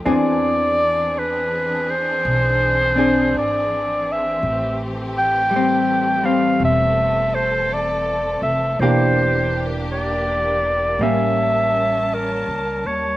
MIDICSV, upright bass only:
0, 0, Header, 1, 2, 480
1, 0, Start_track
1, 0, Tempo, 1090909
1, 24, Time_signature, 4, 2, 24, 8
1, 3384, Tempo, 1104972
1, 5764, End_track
2, 0, Start_track
2, 0, Title_t, "Upright bass"
2, 0, Program_c, 0, 32
2, 26, Note_on_c, 0, 40, 62
2, 972, Note_off_c, 0, 40, 0
2, 990, Note_on_c, 0, 35, 75
2, 1453, Note_off_c, 0, 35, 0
2, 1469, Note_on_c, 0, 32, 55
2, 1930, Note_off_c, 0, 32, 0
2, 1948, Note_on_c, 0, 33, 63
2, 2886, Note_off_c, 0, 33, 0
2, 2904, Note_on_c, 0, 28, 69
2, 3682, Note_off_c, 0, 28, 0
2, 3700, Note_on_c, 0, 29, 59
2, 3853, Note_off_c, 0, 29, 0
2, 3862, Note_on_c, 0, 28, 70
2, 4802, Note_off_c, 0, 28, 0
2, 4816, Note_on_c, 0, 33, 69
2, 5446, Note_off_c, 0, 33, 0
2, 5463, Note_on_c, 0, 37, 44
2, 5615, Note_off_c, 0, 37, 0
2, 5623, Note_on_c, 0, 39, 52
2, 5764, Note_off_c, 0, 39, 0
2, 5764, End_track
0, 0, End_of_file